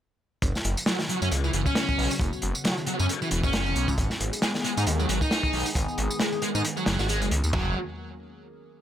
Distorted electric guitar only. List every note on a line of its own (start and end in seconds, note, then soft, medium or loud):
0.87 0.91 F#3 loud
1.09 1.14 F#3 medium
1.22 1.28 C#4 medium
1.44 1.50 E3 medium
1.54 1.61 E3 loud
1.66 2.09 C#4 medium
2.65 2.69 F#3 loud
2.87 2.92 F#3 medium
2.99 3.05 C#4 medium
3.22 3.28 E3 medium
3.31 3.39 E3 loud
3.44 3.87 C#4 medium
4.43 4.47 G#3 medium
4.65 4.69 G#3 loud
4.77 4.83 D#4 medium
4.99 5.05 F#3 medium
5.09 5.17 F#3 loud
5.22 5.65 D#4 medium
6.20 6.25 G#3 loud
6.42 6.47 G#3 medium
6.55 6.61 D#4 medium
6.77 6.83 F#3 medium
6.87 6.98 F#3 medium
6.99 7.03 F#4 medium
7.09 7.20 G#3 medium
7.21 7.25 G#3 medium
7.54 7.74 F#3 medium